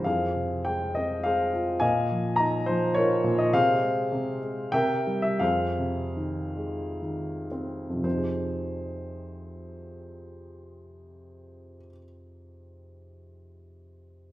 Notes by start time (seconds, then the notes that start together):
0.04 F2 G#4 C5 F5
0.35 C3
0.65 G#3 G5
0.95 C4 D#5
1.24 G#3 G#4 C5 F5
1.53 F4
1.80 A#2 D#5 F5 G#5
2.11 F3
2.36 D#4 A#5
2.66 F3 C5
2.95 D#4 F4 A#4 C#5
3.24 A#2
3.38 D#5
3.53 C3 G#4 C5 F5
3.81 G#3
4.12 C3
4.41 G#3
4.72 C3 A#4 E5 G5
5.07 G3
5.22 E5
5.39 F2 G#4 C5 F5
5.78 C3
6.17 D#3
6.57 G#3
7.02 D#3
7.51 C4
7.90 F2
7.95 C3
8.01 F3 C5
8.06 C4
8.11 D#4
8.18 G#4